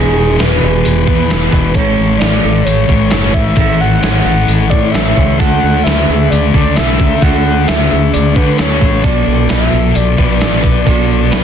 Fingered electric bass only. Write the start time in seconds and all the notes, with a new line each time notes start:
Already playing: E1
0.41 E1
0.63 E1
0.86 E1
1.08 E2
1.32 E1
1.53 E1
1.75 A1
1.99 A1
2.22 A1
2.44 A1
2.67 A1
2.89 A1
3.12 F#1
3.34 A1
3.57 A1
4.03 A1
4.25 A1
4.48 A1
4.72 A2
4.95 A1
5.18 C#2
5.40 D2
5.63 D2
5.86 D2
6.09 D2
6.32 D2
6.55 D2
6.79 B1
7.00 D2
7.22 D2
7.70 D2
7.93 D2
8.16 D2
8.37 D3
8.60 D2
8.82 A1
9.05 B1
9.28 B1
9.51 B1
9.73 B1
9.97 B1
10.19 B1
10.41 A1
10.64 B1
10.87 B1
11.33 B1